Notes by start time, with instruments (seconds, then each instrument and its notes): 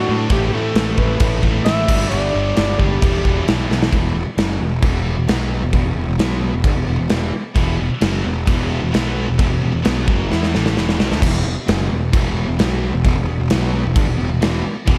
Already playing: distorted electric guitar D3 F#3 A3 D4, alto saxophone F#4
0.09 picked electric bass A2, distorted electric guitar D3 A3 D4
0.29 picked electric bass A1, distorted electric guitar A2 E3 A3 C4 E4, alto saxophone G4, kick, crash
0.48 alto saxophone G4
0.52 distorted electric guitar A2 E3 A3, picked electric bass A2, alto saxophone A4
0.75 picked electric bass A1, distorted electric guitar A2 E3 A3, snare, crash
0.98 picked electric bass A1, distorted electric guitar A2 E3 A3, alto saxophone B4, kick
1.20 picked electric bass A1, distorted electric guitar A2 E3 A3, kick, crash
1.41 picked electric bass A1, distorted electric guitar A2 E3 A3 C4 E4, kick
1.65 picked electric bass A1, distorted electric guitar A2 E3 A3 C4 E4, alto saxophone E5, snare, crash
1.88 picked electric bass G1, distorted electric guitar G2 D3 G3 B3 D4, kick, crash
2.10 picked electric bass G1, distorted electric guitar G2 D3 G3, alto saxophone D5, crash
2.33 picked electric bass G1, distorted electric guitar G2 D3 G3
2.57 picked electric bass G1, distorted electric guitar G2 D3 G3, alto saxophone D5, snare, crash
2.79 picked electric bass G1, distorted electric guitar G2 D3 G3, alto saxophone G4, kick
3.01 picked electric bass E1, distorted electric guitar E2 B2 E3 G3, kick, crash
3.05 distorted electric guitar B3 E4
3.24 picked electric bass E1, distorted electric guitar E2 B2 E3, kick
3.47 picked electric bass B1, distorted electric guitar E2 B2 E3, snare, crash
3.70 picked electric bass B1, distorted electric guitar E2 B2 E3, snare
3.83 snare
3.92 picked electric bass E1, distorted electric guitar E2 B2 E3, kick, crash
4.14 picked electric bass E1, distorted electric guitar E2 B2
4.25 muted picked electric bass stroke, muted distorted electric guitar stroke, muted overdriven electric guitar stroke
4.37 picked electric bass F#1, distorted electric guitar F#2 C#3 F#3, snare, crash
4.61 picked electric bass E1, distorted electric guitar E2 B2
4.82 picked electric bass E1, distorted electric guitar E2 B2 E3, kick, crash
5.17 picked electric bass E1, distorted electric guitar E2 B2
5.27 picked electric bass B1, distorted electric guitar B2 F#3 B3, snare, crash
5.62 picked electric bass E1, distorted electric guitar E2 B2
5.73 picked electric bass E1, distorted electric guitar E2 B2, kick, crash
5.85 picked electric bass E1, distorted electric guitar E2 B2
5.95 picked electric bass E1, distorted electric guitar E2 B2
6.07 picked electric bass E1, distorted electric guitar E2 B2
6.18 picked electric bass B1, distorted electric guitar B2 F#3 B3, snare, crash
6.53 picked electric bass E1, distorted electric guitar E2 B2
6.64 picked electric bass G1, distorted electric guitar G2 D3, kick, crash
6.75 picked electric bass E1, distorted electric guitar E2 B2
6.87 picked electric bass E1, distorted electric guitar E2 B2
6.99 picked electric bass E1, distorted electric guitar E2 B2
7.09 picked electric bass E1, distorted electric guitar E2 B2 E3, snare, crash
7.32 muted overdriven electric guitar stroke, muted picked electric bass stroke, muted distorted electric guitar stroke
7.56 picked electric bass E1, distorted electric guitar E2 B2 E3, kick, crash
7.80 picked electric bass E1, distorted electric guitar E2 B2
7.90 muted overdriven electric guitar stroke, muted distorted electric guitar stroke, muted picked electric bass stroke
8.01 picked electric bass F#1, distorted electric guitar F#2 C#3 F#3, snare, crash
8.23 picked electric bass E1, distorted electric guitar E2 B2
8.46 picked electric bass E1, distorted electric guitar E2 B2 E3, kick, crash
8.81 picked electric bass E1, distorted electric guitar E2 B2
8.91 picked electric bass B1, distorted electric guitar B2 F#3 B3, snare, crash
9.27 picked electric bass E1, distorted electric guitar E2 B2
9.38 picked electric bass E1, distorted electric guitar E2 B2, kick, crash
9.49 picked electric bass E1, distorted electric guitar E2 B2
9.61 picked electric bass E1, distorted electric guitar E2 B2
9.71 picked electric bass E1, distorted electric guitar E2 B2
9.84 picked electric bass B1, distorted electric guitar B2 F#3 B3, snare, crash
10.06 picked electric bass F#1, distorted electric guitar F#2 C#3 F#3, kick
10.29 picked electric bass E2, distorted electric guitar E3 B3 E4, snare
10.43 snare
10.53 picked electric bass A1, distorted electric guitar A2 E3 A3, snare
10.66 snare
10.75 picked electric bass E1, distorted electric guitar E2 B2 E3, snare
10.89 snare
10.99 picked electric bass B1, distorted electric guitar B2 F#3, snare
11.09 picked electric bass D2, distorted electric guitar D3 A3, snare
11.21 picked electric bass E1, distorted electric guitar E2 B2 E3, kick, crash
11.45 picked electric bass E1, distorted electric guitar E2 B2
11.55 muted distorted electric guitar stroke, muted overdriven electric guitar stroke, muted picked electric bass stroke
11.67 picked electric bass F#1, distorted electric guitar F#2 C#3 F#3, snare, crash
11.91 picked electric bass E1, distorted electric guitar E2 B2
12.13 picked electric bass E1, distorted electric guitar E2 B2 E3, kick, crash
12.48 picked electric bass E1, distorted electric guitar E2 B2
12.59 picked electric bass B1, distorted electric guitar B2 F#3 B3, snare, crash
12.93 picked electric bass E1, distorted electric guitar E2 B2
13.05 picked electric bass E1, distorted electric guitar E2 B2, kick, crash
13.16 picked electric bass E1, distorted electric guitar E2 B2
13.28 picked electric bass E1, distorted electric guitar E2 B2
13.40 picked electric bass E1, distorted electric guitar E2 B2
13.50 picked electric bass B1, distorted electric guitar B2 F#3 B3, snare, crash
13.85 picked electric bass E1, distorted electric guitar E2 B2
13.96 picked electric bass G1, distorted electric guitar G2 D3, kick, crash
14.07 picked electric bass E1, distorted electric guitar E2 B2
14.18 picked electric bass E1, distorted electric guitar E2 B2
14.29 picked electric bass E1, distorted electric guitar E2 B2
14.40 picked electric bass E1, distorted electric guitar E2 B2 E3, snare, crash
14.64 muted distorted electric guitar stroke, muted overdriven electric guitar stroke, muted picked electric bass stroke
14.85 picked electric bass E1, distorted electric guitar E2 B2 E3, kick, crash